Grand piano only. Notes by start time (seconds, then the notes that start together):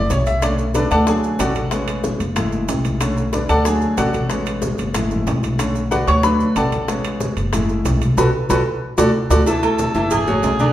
Already playing: D5
0.11 C#5
0.27 E5
0.42 D3 A3 C#4 D5
0.75 D4 A4 B4 D5
0.91 A4 D5 F#5 A5
1.07 F#3 A3 D4 G#4 G#5
1.39 F#4 A4 D5 F#5
1.71 G#3 B3 C#4
2.36 G#3 A3 E4
3.00 D3 A3 C#4
3.33 D4 A4 B4 D5
3.49 A4 D5 F#5 A5
3.65 F#3 A3 D4 G#4 G#5
3.98 F#4 A4 D5 F#5
4.29 G#3 B3 C#4
4.94 G#3 A3 E4
5.59 D3 A3 C#4
5.91 F#4 B4 D5 F#5
6.07 C#5 C#6
6.23 F#3 A3 D4 B4 B5
6.56 A4 D5 F#5 A5
6.88 G#3 B3 C#4
7.53 G#3 A3 E4
8.18 F#4 A4 B4
8.50 F#4 A4 B4
8.98 F#4 A4 D5
9.30 F#4 A4 D5
9.46 E3 E4 E5
9.62 A3 E4 A4
9.95 E3 E4 E5
10.27 A3 F#4 C#5
10.60 D3 D4 D5